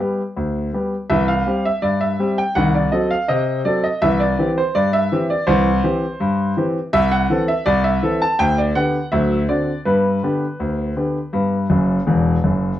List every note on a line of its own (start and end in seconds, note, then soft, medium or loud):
0.00 0.20 G3 soft
0.00 0.20 B3 soft
0.00 0.20 G4 soft
0.00 0.21 E5 medium
0.36 0.68 D2 medium
0.73 0.94 G3 soft
0.73 0.94 B3 soft
0.73 0.94 G4 soft
1.10 1.41 C2 medium
1.10 1.31 E3 soft
1.10 1.28 E5 medium
1.28 1.63 F5 medium
1.47 1.67 G3 soft
1.47 1.67 C4 soft
1.47 1.67 G4 soft
1.65 1.83 E5 medium
1.82 2.14 G2 medium
1.82 2.01 D5 medium
2.01 2.36 E5 medium
2.20 2.40 G3 soft
2.20 2.40 C4 soft
2.20 2.40 G4 soft
2.38 2.56 G5 medium
2.55 2.87 C2 medium
2.55 2.78 D#3 medium
2.55 2.74 F#5 medium
2.75 2.93 D5 medium
2.92 3.12 F#3 soft
2.92 3.13 C4 soft
2.92 3.13 A4 soft
2.92 3.10 D#5 medium
3.10 3.29 F5 medium
3.28 3.60 C3 medium
3.28 3.58 D#5 medium
3.65 3.85 F#3 soft
3.65 3.86 C4 soft
3.65 3.86 A4 soft
3.65 3.83 D5 medium
3.84 4.02 D#5 medium
4.02 4.33 C2 medium
4.02 4.24 E3 medium
4.02 4.20 E5 medium
4.20 4.49 D5 medium
4.39 4.59 E3 medium
4.39 4.59 C4 medium
4.39 4.59 G4 soft
4.57 4.75 C5 medium
4.75 5.06 G2 medium
4.75 4.93 D5 medium
4.93 5.28 E5 medium
5.12 5.32 E3 medium
5.12 5.32 C4 soft
5.12 5.32 G4 medium
5.30 5.48 D5 medium
5.47 5.78 C2 medium
5.47 5.69 E3 medium
5.47 6.64 C5 medium
5.83 6.04 E3 medium
5.83 6.04 C4 medium
5.83 6.04 G4 medium
6.20 6.51 G2 medium
6.57 6.77 E3 medium
6.57 6.77 C4 soft
6.57 6.78 G4 soft
6.93 7.24 C2 medium
6.93 7.12 E5 loud
7.11 7.41 F#5 medium
7.30 7.50 E3 medium
7.30 7.50 C4 medium
7.30 7.51 A4 medium
7.48 7.66 E5 medium
7.66 7.97 C2 medium
7.66 7.84 D5 loud
7.84 8.19 E5 medium
8.03 8.23 E3 soft
8.03 8.23 C4 soft
8.03 8.23 A4 medium
8.22 8.40 A5 medium
8.39 8.70 D2 medium
8.39 8.57 G5 loud
8.58 8.76 D5 medium
8.76 8.96 D3 soft
8.76 8.96 B3 soft
8.76 8.96 G4 soft
8.76 9.05 F#5 medium
9.12 9.44 D2 medium
9.12 9.34 F#3 medium
9.12 9.41 E5 medium
9.49 9.69 D3 soft
9.49 9.70 C4 soft
9.49 9.70 F#4 soft
9.49 9.78 D5 medium
9.85 10.17 G2 medium
9.85 10.07 B3 soft
9.85 11.92 B4 medium
10.23 10.43 D3 soft
10.23 10.44 B3 soft
10.23 10.44 G4 soft
10.59 10.91 D2 medium
10.96 11.17 D3 soft
10.96 11.17 B3 soft
10.96 11.17 G4 soft
11.33 11.65 G2 medium
11.33 11.55 B3 soft
11.70 11.98 F#1 medium
11.70 11.98 F#2 medium
12.07 12.35 E1 medium
12.07 12.34 E2 medium
12.44 12.71 F#1 medium
12.44 12.71 F#2 medium